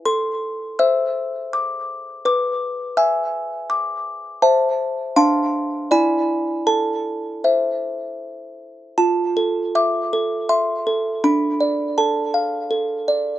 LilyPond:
\new Staff \with { instrumentName = "Music box" } { \time 3/4 \key a \minor \tempo 4 = 81 << { c'''4 e'''4 d'''4 | d'''4 e'''4 d'''4 | a''4 c'''4 b''4 | a''2~ a''8 r8 |
a''4 d'''4 c'''4 | b''4 a''4. r8 | } \\ { a'4 <c'' e''>2 | b'4 <e'' gis''>2 | <c'' e''>4 <d' f'' a''>4 <e' d'' gis''>4 | a'4 <c'' e''>2 |
f'8 a'8 e''8 a'8 e''8 a'8 | d'8 d''8 a'8 f''8 a'8 d''8 | } >> }